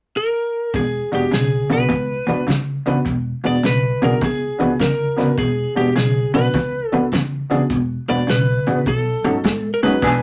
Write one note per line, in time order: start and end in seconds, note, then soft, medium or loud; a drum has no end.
0.17 0.75 A#4 medium
0.74 0.99 E1 medium
0.74 1.09 E2 medium
0.74 1.09 B2 medium
0.74 1.11 G#4 medium
0.74 kick loud
0.74 closed hi-hat medium
1.12 1.25 E1 medium
1.12 1.30 E2 medium
1.12 1.30 B2 medium
1.12 1.22 B3 medium
1.12 1.22 D4 medium
1.12 1.22 F#4 medium
1.12 1.33 G4 medium
1.12 1.23 G#4 medium
1.12 closed hi-hat medium
1.31 1.57 B1 medium
1.31 1.66 E2 medium
1.31 1.66 C#3 loud
1.31 1.69 G#4 medium
1.31 snare medium
1.31 closed hi-hat medium
1.70 1.83 B1 medium
1.70 1.88 E2 medium
1.70 1.88 C#3 medium
1.70 1.80 B3 medium
1.70 1.80 D4 medium
1.70 1.80 F#4 medium
1.70 1.81 G#4 medium
1.70 2.45 B4 medium
1.70 closed hi-hat medium
1.89 2.15 C#2 medium
1.89 2.24 E2 medium
1.89 2.24 B2 medium
1.89 kick medium
1.89 closed hi-hat medium
2.27 2.41 C#2 medium
2.27 2.45 E2 medium
2.27 2.45 B2 medium
2.27 2.38 B3 medium
2.27 2.38 D4 medium
2.27 2.38 F#4 medium
2.27 2.39 B4 medium
2.27 closed hi-hat medium
2.47 2.73 D2 medium
2.47 2.82 E2 medium
2.47 2.82 C#3 medium
2.47 kick medium
2.47 snare medium
2.47 closed hi-hat medium
2.86 2.99 D2 medium
2.86 3.04 E2 medium
2.86 3.04 C#3 medium
2.86 2.96 B3 medium
2.86 2.96 D4 medium
2.86 2.96 F#4 medium
2.86 2.97 B4 medium
2.86 closed hi-hat medium
3.05 3.31 E1 medium
3.05 3.40 E2 medium
3.05 3.40 B2 medium
3.05 kick loud
3.05 closed hi-hat medium
3.44 3.56 E1 medium
3.44 3.62 E2 medium
3.44 3.62 B2 medium
3.44 3.54 B3 medium
3.44 3.54 D4 medium
3.44 3.54 F#4 medium
3.44 3.54 G#4 medium
3.44 3.66 D5 medium
3.44 closed hi-hat medium
3.63 3.89 B1 medium
3.63 3.98 E2 medium
3.63 3.98 C#3 medium
3.63 4.05 B4 loud
3.63 snare medium
3.63 closed hi-hat medium
4.02 4.15 B1 medium
4.02 4.20 E2 medium
4.02 4.20 C#3 medium
4.02 4.12 B3 medium
4.02 4.12 D4 medium
4.02 4.12 F#4 medium
4.02 4.12 G#4 medium
4.02 4.22 A#4 medium
4.02 closed hi-hat medium
4.21 4.46 C#2 medium
4.21 4.57 E2 medium
4.21 4.57 B2 medium
4.21 4.77 G#4 medium
4.21 kick loud
4.21 snare soft
4.21 closed hi-hat medium
4.58 4.73 C#2 medium
4.58 4.78 E2 medium
4.58 4.78 B2 medium
4.58 4.69 B3 medium
4.58 4.69 D4 medium
4.58 4.70 F#4 medium
4.58 4.70 B4 medium
4.58 closed hi-hat soft
4.79 5.05 D2 medium
4.79 5.15 E2 medium
4.79 5.15 C#3 medium
4.79 5.38 A#4 medium
4.79 kick medium
4.79 snare medium
4.79 closed hi-hat medium
5.17 5.31 D2 medium
5.17 5.36 E2 medium
5.17 5.36 C#3 medium
5.17 5.27 B3 medium
5.17 5.28 D4 medium
5.17 5.28 F#4 medium
5.17 5.28 B4 medium
5.17 snare soft
5.17 closed hi-hat medium
5.37 5.63 E1 medium
5.37 5.73 E2 medium
5.37 5.73 B2 medium
5.37 5.77 G#4 medium
5.37 kick loud
5.37 closed hi-hat medium
5.75 5.89 E1 medium
5.75 5.94 E2 medium
5.75 5.94 B2 medium
5.75 5.86 B3 medium
5.75 5.86 D4 medium
5.75 5.86 F#4 medium
5.75 5.96 G4 medium
5.75 5.87 G#4 medium
5.75 closed hi-hat medium
5.95 6.21 B1 medium
5.95 6.31 E2 medium
5.95 6.31 C#3 medium
5.95 6.32 G#4 medium
5.95 snare medium
5.95 closed hi-hat medium
6.34 6.47 B1 medium
6.34 6.52 E2 medium
6.34 6.52 C#3 medium
6.34 6.44 B3 medium
6.34 6.45 D4 medium
6.34 6.44 F#4 medium
6.34 6.88 B4 medium
6.34 6.45 B4 medium
6.34 snare soft
6.34 closed hi-hat medium
6.54 6.79 C#2 medium
6.54 6.89 E2 medium
6.54 6.89 B2 medium
6.54 kick loud
6.54 snare soft
6.54 closed hi-hat medium
6.88 7.08 A4 medium
6.92 7.05 C#2 medium
6.92 7.10 E2 medium
6.92 7.11 B2 medium
6.92 7.02 B3 medium
6.92 7.02 D4 medium
6.92 7.02 F#4 medium
6.92 7.03 B4 medium
6.92 closed hi-hat medium
7.12 7.37 D2 medium
7.12 7.47 E2 medium
7.12 7.48 C#3 medium
7.12 kick medium
7.12 snare loud
7.12 closed hi-hat medium
7.50 7.63 D2 medium
7.50 7.69 E2 medium
7.50 7.69 C#3 medium
7.50 7.60 B3 medium
7.50 7.60 D4 medium
7.50 7.61 F#4 medium
7.50 7.61 G#4 medium
7.50 closed hi-hat medium
7.70 7.95 E1 medium
7.70 8.05 E2 medium
7.70 8.05 B2 medium
7.70 kick loud
7.70 closed hi-hat medium
8.08 8.21 E1 medium
8.08 8.26 E2 medium
8.08 8.27 B2 medium
8.08 8.18 B3 medium
8.08 8.19 D4 medium
8.08 8.19 F#4 medium
8.08 8.19 B4 medium
8.08 8.29 D5 medium
8.08 closed hi-hat medium
8.27 8.53 B1 medium
8.27 8.62 E2 medium
8.27 8.63 C#3 medium
8.27 8.88 B4 medium
8.27 snare loud
8.27 closed hi-hat medium
8.67 8.80 A1 medium
8.67 8.85 E2 medium
8.67 8.85 C#3 medium
8.67 8.77 B3 medium
8.67 8.77 D4 medium
8.67 8.77 F#4 medium
8.67 8.77 G#4 medium
8.67 closed hi-hat medium
8.86 9.11 B1 medium
8.86 9.21 B2 medium
8.86 9.22 F#3 medium
8.86 9.73 A4 medium
8.86 kick loud
8.86 closed hi-hat medium
9.24 9.37 G#2 medium
9.24 9.42 B2 medium
9.24 9.42 F#3 medium
9.24 9.34 C#4 medium
9.24 9.35 D#4 medium
9.24 9.35 F#4 medium
9.24 9.35 A4 medium
9.24 closed hi-hat medium
9.44 9.69 A2 medium
9.44 9.79 B2 medium
9.44 9.79 G#3 medium
9.44 kick medium
9.44 snare loud
9.44 closed hi-hat medium
9.74 9.83 A#4 medium
9.83 9.96 F#2 medium
9.83 10.00 B2 medium
9.83 10.01 G#3 medium
9.83 9.92 C#4 medium
9.83 9.93 D#4 medium
9.83 9.93 F#4 medium
9.83 9.93 G#4 medium
9.83 10.22 B4 medium
9.83 snare soft
9.83 closed hi-hat medium
10.02 10.22 E1 medium
10.02 10.22 E3 medium
10.02 10.22 B3 medium
10.02 10.22 D4 medium
10.02 10.22 G#4 medium
10.02 kick loud
10.02 closed hi-hat medium